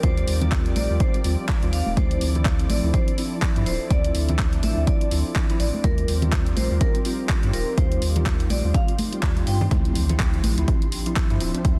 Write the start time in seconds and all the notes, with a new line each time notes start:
Already playing: F3 C4 D#4 G4 A#4 D5 F5 C6 D6
0.03 D#2 G3 C4 F4 C5, kick, closed hi-hat
0.17 closed hi-hat
0.28 D#2, open hi-hat
0.41 G3 C4 F4, closed hi-hat, low conga
0.52 kick, clap, closed hi-hat
0.66 closed hi-hat
0.76 A#1 D5, open hi-hat, high conga
0.89 D#2 G3 C4 F4
1.00 C5, kick, closed hi-hat
1.14 closed hi-hat
1.24 D#2 G3 C4 F4, open hi-hat
1.49 kick, clap, closed hi-hat
1.62 D#2 G3 C4 F4, closed hi-hat
1.73 F5, open hi-hat
1.86 D#1, high conga
1.96 D2 F3 C4 D4 E4 A4 C5, kick, closed hi-hat, high conga
2.11 closed hi-hat
2.21 D2, open hi-hat
2.35 F3 C4 E4, closed hi-hat, low conga
2.45 E5 C6, kick, clap, closed hi-hat
2.59 F3, closed hi-hat
2.70 A1 D5, open hi-hat, high conga
2.83 D2 F3 C4 E4
2.94 C5, kick, closed hi-hat
3.08 closed hi-hat
3.17 F3 C4 E4, open hi-hat
3.42 kick, clap, closed hi-hat
3.56 G2 F3 C4 E4, closed hi-hat
3.66 D1 C5, open hi-hat
3.90 D2 F3 C4 E4 D5, kick, closed hi-hat
4.04 closed hi-hat
4.15 D2, open hi-hat
4.28 F3 C4 E4, closed hi-hat, low conga
4.39 kick, clap, closed hi-hat
4.53 closed hi-hat
4.63 A1 E5, open hi-hat, high conga
4.76 D2 F3 C4 E4
4.87 D5, kick, closed hi-hat
5.01 closed hi-hat
5.11 D2 F3 C4 E4, open hi-hat
5.36 kick, clap, closed hi-hat
5.49 F3 C4 E4, closed hi-hat
5.60 A1 D5, open hi-hat
5.74 high conga
5.84 D#2 G3 C4 D#4 F4 G4 A#4, kick, closed hi-hat, high conga
5.98 closed hi-hat
6.08 D#2, open hi-hat
6.22 G3 C4 F4, closed hi-hat, low conga
6.27 G4
6.32 kick, clap, closed hi-hat
6.46 F5, closed hi-hat
6.57 A#1 C5, open hi-hat, high conga
6.70 D#2 G3 C4 F4
6.81 A#4, kick, closed hi-hat
6.95 closed hi-hat
7.04 G3 C4 F4, open hi-hat
7.29 kick, clap, closed hi-hat
7.43 G2 G3 C4 F4, closed hi-hat
7.53 D#1 A#4, open hi-hat
7.77 D#2 G3 C4 F4 C5, kick, closed hi-hat
7.92 closed hi-hat
8.02 D#2, open hi-hat
8.15 G3 C4 F4, closed hi-hat, low conga
8.26 kick, clap, closed hi-hat
8.40 closed hi-hat
8.50 A#1 D5, open hi-hat, high conga
8.64 D#2 G3 C4 F4
8.74 F5, kick, closed hi-hat
8.88 closed hi-hat
8.99 open hi-hat, high conga
9.12 G3 C4 F4, closed hi-hat
9.23 D#2, kick, clap, closed hi-hat
9.36 G3 C4 F4, closed hi-hat
9.46 G2 G3 C4 F4 G5, open hi-hat
9.60 G3 C4 D#4, high conga, low conga
9.70 D2 F3 C4 D4 E4, kick, closed hi-hat, impact, high conga
9.85 closed hi-hat
9.95 D2, open hi-hat
10.09 F3 C4 E4, closed hi-hat, low conga
10.20 kick, clap, closed hi-hat
10.34 closed hi-hat
10.43 A1, open hi-hat, high conga
10.57 D2 F3 C4 E4, closed hi-hat
10.68 kick, closed hi-hat
10.81 E5, closed hi-hat
10.92 open hi-hat
11.06 F3 C4 E4, closed hi-hat
11.16 kick, clap, closed hi-hat
11.30 G2 F3 C4 E4, closed hi-hat
11.40 D1 F3 C4 E4, open hi-hat
11.54 F3 C4 D4, closed hi-hat
11.64 D2 F3 C4 E4, kick, closed hi-hat